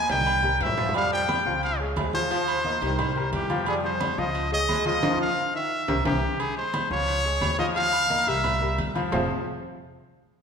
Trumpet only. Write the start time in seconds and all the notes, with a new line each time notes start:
0.11 G5
0.62 E5
0.96 F5
1.13 G5
1.64 F5
2.14 C5
3.34 G4
3.68 G#4
3.85 C5
4.19 D#5
4.53 D#5
4.87 D#5
5.21 F5
5.56 E5
6.06 G4
6.40 G#4
6.57 C5
6.92 C#5
7.59 D#5
7.76 F5
8.28 E5